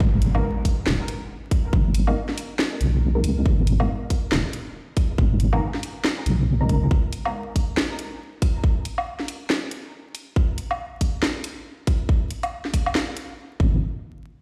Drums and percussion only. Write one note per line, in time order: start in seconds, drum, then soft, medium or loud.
0.00 kick loud
0.22 closed hi-hat medium
0.35 low woodblock soft
0.65 kick medium
0.65 open hi-hat medium
0.87 snare loud
1.08 closed hi-hat medium
1.51 kick loud
1.51 closed hi-hat medium
1.73 kick loud
1.94 closed hi-hat medium
2.07 low woodblock soft
2.29 snare soft
2.38 open hi-hat medium
2.59 snare loud
2.81 closed hi-hat medium
3.24 closed hi-hat medium
3.46 kick loud
3.67 closed hi-hat medium
3.80 low woodblock medium
4.10 kick medium
4.10 open hi-hat medium
4.32 snare loud
4.53 closed hi-hat medium
4.97 kick loud
4.97 closed hi-hat medium
5.18 kick loud
5.40 closed hi-hat medium
5.53 low woodblock medium
5.74 snare soft
5.83 open hi-hat medium
6.04 snare loud
6.26 closed hi-hat medium
6.69 kick medium
6.69 closed hi-hat medium
6.91 kick loud
7.12 closed hi-hat medium
7.25 low woodblock medium
7.56 kick medium
7.56 open hi-hat medium
7.77 snare loud
7.99 closed hi-hat medium
8.42 kick loud
8.42 closed hi-hat medium
8.64 kick loud
8.85 closed hi-hat medium
8.98 low woodblock medium
9.20 snare soft
9.28 open hi-hat medium
9.50 snare loud
9.71 closed hi-hat medium
10.15 closed hi-hat medium
10.36 kick loud
10.58 closed hi-hat medium
10.71 low woodblock medium
11.01 kick medium
11.01 open hi-hat loud
11.23 snare loud
11.44 closed hi-hat medium
11.87 kick loud
11.87 closed hi-hat medium
12.09 kick loud
12.30 closed hi-hat medium
12.43 closed hi-hat soft
12.43 low woodblock medium
12.65 snare soft
12.74 kick medium
12.74 open hi-hat medium
12.86 low woodblock medium
12.95 snare loud
13.17 closed hi-hat medium
13.60 kick loud